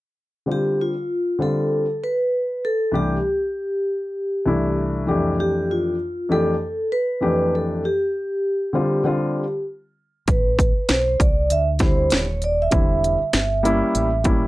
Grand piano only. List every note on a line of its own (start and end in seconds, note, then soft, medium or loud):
0.46 0.92 D3 medium
0.46 0.92 G3 medium
0.46 0.93 C4 soft
0.46 0.93 F4 medium
1.39 1.84 D3 medium
1.39 1.85 G3 medium
1.39 1.85 C4 medium
1.39 1.85 F4 medium
2.92 3.15 C2 medium
2.92 3.15 E3 medium
2.92 3.16 A3 medium
2.92 3.16 D4 medium
2.92 3.16 G4 medium
4.45 5.33 C2 medium
4.45 5.05 E3 medium
4.45 5.06 A3 medium
4.45 5.07 D4 medium
4.45 5.34 E4 medium
5.07 5.94 F2 medium
5.07 5.94 E3 medium
5.07 5.94 A3 medium
5.07 5.94 D4 medium
5.07 5.95 G4 medium
6.29 6.52 F2 medium
6.29 6.53 E3 medium
6.29 6.53 A3 medium
6.29 6.53 D4 medium
6.29 6.54 G4 medium
7.21 7.82 F2 medium
7.21 7.83 E3 medium
7.21 7.83 A3 medium
7.21 7.83 D4 medium
7.21 7.83 G4 medium
8.73 9.02 D3 medium
8.73 9.03 G3 medium
8.73 9.04 C4 medium
8.73 9.05 F4 medium
9.04 9.42 D3 medium
9.04 9.43 G3 medium
9.04 9.43 C4 medium
9.04 9.43 F4 medium
11.79 12.25 D3 medium
11.79 12.25 G3 medium
11.79 12.26 C4 medium
11.79 12.26 E4 medium
12.71 13.17 D3 medium
12.71 13.17 G3 medium
12.71 13.17 C4 medium
12.71 13.18 E4 medium
13.63 14.09 G3 medium
13.63 14.09 A#3 medium
13.63 14.09 C#4 medium
13.63 14.10 E4 medium
14.24 14.47 G3 medium
14.24 14.47 A#3 medium
14.24 14.47 C#4 medium
14.24 14.47 E4 medium